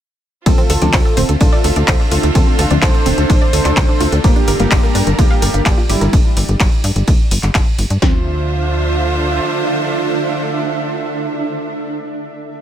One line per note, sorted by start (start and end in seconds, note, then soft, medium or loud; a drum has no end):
0.46 0.54 D2 loud
0.46 6.18 D3 medium
0.46 0.79 D3 loud
0.46 4.20 D3 medium
0.46 0.79 F3 medium
0.46 4.20 A3 medium
0.46 0.79 C4 loud
0.46 4.20 C4 medium
0.46 0.52 C4 medium
0.46 6.18 D4 medium
0.46 5.00 D4 medium
0.46 6.09 F4 medium
0.46 1.31 F4 medium
0.46 1.31 A4 loud
0.46 4.20 E5 medium
0.46 kick loud
0.46 closed hi-hat medium
0.46 ride medium
0.58 0.66 C4 medium
0.58 closed hi-hat soft
0.70 0.77 D2 loud
0.70 0.78 A4 loud
0.70 closed hi-hat medium
0.70 open hi-hat loud
0.82 0.89 D2 medium
0.82 0.91 D3 medium
0.82 0.91 F3 medium
0.82 0.91 C4 medium
0.82 0.85 D5 medium
0.82 snare soft
0.82 closed hi-hat medium
0.87 4.24 A4 medium
0.93 1.01 D2 loud
0.93 1.02 C5 loud
0.93 kick loud
0.93 snare loud
0.93 clap loud
0.93 closed hi-hat medium
0.93 open hi-hat medium
0.93 ride medium
1.05 1.13 A4 medium
1.05 snare medium
1.17 1.25 D1 loud
1.17 1.22 C4 loud
1.17 closed hi-hat medium
1.17 open hi-hat medium
1.29 1.36 D2 medium
1.29 1.32 A4 medium
1.29 closed hi-hat medium
1.41 1.48 A1 loud
1.41 1.49 D4 loud
1.41 2.02 F4 medium
1.41 2.02 A4 loud
1.41 kick loud
1.41 closed hi-hat medium
1.41 ride medium
1.53 1.58 D5 loud
1.53 snare soft
1.64 1.72 D2 medium
1.64 1.72 A4 loud
1.64 closed hi-hat medium
1.64 open hi-hat loud
1.76 1.84 D2 medium
1.76 1.79 D5 medium
1.76 closed hi-hat medium
1.88 1.95 D2 loud
1.88 1.96 C5 loud
1.88 kick loud
1.88 snare loud
1.88 clap loud
1.88 closed hi-hat medium
1.88 ride medium
2.00 2.05 D4 medium
2.00 snare soft
2.11 2.19 D2 loud
2.11 2.73 F4 medium
2.11 2.20 F4 loud
2.11 2.73 A4 loud
2.11 closed hi-hat medium
2.11 open hi-hat medium
2.23 2.31 D2 medium
2.23 2.27 A4 medium
2.23 snare soft
2.23 closed hi-hat medium
2.35 2.43 D2 loud
2.35 2.68 D3 loud
2.35 2.68 F3 medium
2.35 2.41 C4 medium
2.35 2.68 C4 loud
2.35 kick loud
2.35 closed hi-hat medium
2.35 ride medium
2.47 2.55 C4 medium
2.59 2.66 D2 medium
2.59 2.67 A4 loud
2.59 closed hi-hat medium
2.59 open hi-hat loud
2.71 2.78 D2 medium
2.71 2.80 D3 medium
2.71 2.80 F3 medium
2.71 2.80 C4 medium
2.71 2.74 D5 medium
2.71 closed hi-hat medium
2.82 2.90 D2 loud
2.82 4.15 A4 medium
2.82 2.91 C5 loud
2.82 4.15 C5 loud
2.82 kick loud
2.82 snare loud
2.82 clap loud
2.82 closed hi-hat medium
2.82 ride medium
2.94 3.02 A4 medium
2.94 closed hi-hat soft
3.06 3.13 D1 loud
3.06 3.11 C4 loud
3.06 closed hi-hat medium
3.06 open hi-hat loud
3.18 3.25 D2 medium
3.18 3.21 A4 medium
3.18 closed hi-hat medium
3.30 3.37 A1 loud
3.30 3.38 D4 loud
3.30 kick loud
3.30 closed hi-hat medium
3.30 ride medium
3.42 3.47 D5 loud
3.53 3.61 D2 medium
3.53 3.61 A4 loud
3.53 closed hi-hat medium
3.53 open hi-hat loud
3.65 3.72 D2 medium
3.65 3.68 D5 medium
3.65 clap soft
3.65 closed hi-hat medium
3.65 closed hi-hat soft
3.77 3.84 D2 loud
3.77 3.85 C5 loud
3.77 kick loud
3.77 snare loud
3.77 clap loud
3.77 closed hi-hat medium
3.77 ride medium
3.89 3.94 D4 medium
4.00 4.08 D2 loud
4.00 4.09 F4 loud
4.00 closed hi-hat medium
4.00 open hi-hat loud
4.12 4.20 D2 medium
4.12 4.16 A4 medium
4.12 closed hi-hat medium
4.24 4.32 G1 loud
4.24 4.57 F3 loud
4.24 4.57 G3 medium
4.24 6.11 G3 medium
4.24 4.57 A#3 loud
4.24 5.09 A#3 medium
4.24 6.11 D4 medium
4.24 4.30 D4 medium
4.24 6.13 G4 medium
4.24 5.09 G4 loud
4.24 6.11 A4 medium
4.24 6.11 A#4 medium
4.24 kick loud
4.24 closed hi-hat medium
4.24 ride medium
4.34 4.44 D4 medium
4.34 6.13 D5 medium
4.34 closed hi-hat soft
4.48 4.55 G1 loud
4.48 4.56 A#4 loud
4.48 closed hi-hat medium
4.48 open hi-hat loud
4.60 4.67 G1 medium
4.60 4.69 F3 medium
4.60 4.69 G3 medium
4.60 4.69 A#3 medium
4.60 4.63 F5 medium
4.60 snare soft
4.60 closed hi-hat medium
4.71 4.79 G1 loud
4.71 4.80 D5 loud
4.71 kick loud
4.71 snare loud
4.71 clap loud
4.71 closed hi-hat medium
4.71 open hi-hat medium
4.71 ride medium
4.83 4.91 A#4 medium
4.83 snare medium
4.95 5.02 G2 loud
4.95 5.00 D4 loud
4.95 closed hi-hat medium
4.95 open hi-hat loud
5.07 5.14 G1 medium
5.07 5.10 A#4 medium
5.07 closed hi-hat medium
5.19 5.26 D2 loud
5.19 5.80 A#3 medium
5.19 5.27 F4 loud
5.19 5.80 G4 loud
5.19 kick loud
5.19 closed hi-hat medium
5.19 ride medium
5.30 5.36 F5 loud
5.30 snare soft
5.42 5.50 G1 medium
5.42 5.50 A#4 loud
5.42 closed hi-hat medium
5.42 open hi-hat loud
5.54 5.61 G1 medium
5.54 5.57 F5 medium
5.54 closed hi-hat medium
5.66 5.73 G1 loud
5.66 5.74 D5 loud
5.66 kick loud
5.66 snare loud
5.66 clap loud
5.66 closed hi-hat medium
5.66 ride medium
5.78 5.83 F4 medium
5.78 snare soft
5.89 5.97 G1 loud
5.89 6.13 G3 medium
5.89 6.13 E4 loud
5.89 5.98 G4 loud
5.89 closed hi-hat medium
5.89 open hi-hat loud
6.01 6.09 G1 medium
6.01 6.04 A#4 medium
6.01 snare soft
6.01 closed hi-hat medium
6.13 6.21 G1 loud
6.13 kick loud
6.13 closed hi-hat medium
6.13 ride medium
6.37 6.44 G1 medium
6.37 closed hi-hat medium
6.37 open hi-hat loud
6.49 6.56 G1 medium
6.49 closed hi-hat medium
6.60 6.68 G1 loud
6.60 kick loud
6.60 snare loud
6.60 clap loud
6.60 closed hi-hat medium
6.60 ride medium
6.72 closed hi-hat soft
6.84 6.91 G2 loud
6.84 closed hi-hat medium
6.84 open hi-hat loud
6.96 7.03 G1 medium
6.96 closed hi-hat medium
7.07 7.15 D2 loud
7.07 kick loud
7.07 closed hi-hat medium
7.07 ride medium
7.31 7.39 G1 medium
7.31 closed hi-hat medium
7.31 open hi-hat loud
7.43 7.50 G1 medium
7.43 clap soft
7.43 closed hi-hat soft
7.43 closed hi-hat medium
7.55 7.62 G1 loud
7.55 kick loud
7.55 snare loud
7.55 clap loud
7.55 closed hi-hat medium
7.55 ride medium
7.78 7.86 G1 loud
7.78 closed hi-hat medium
7.78 open hi-hat loud
7.90 7.98 G2 medium
7.90 closed hi-hat medium
8.02 9.40 D2 loud
8.02 11.91 D3 medium
8.02 11.91 F3 medium
8.02 8.24 C4 medium
8.02 11.91 C4 loud
8.02 11.91 D4 medium
8.02 11.90 F4 loud
8.02 11.91 F4 medium
8.02 11.91 C5 medium
8.02 11.91 E5 medium
8.02 kick loud
8.02 snare loud
8.09 11.98 A4 medium
8.16 12.05 E5 medium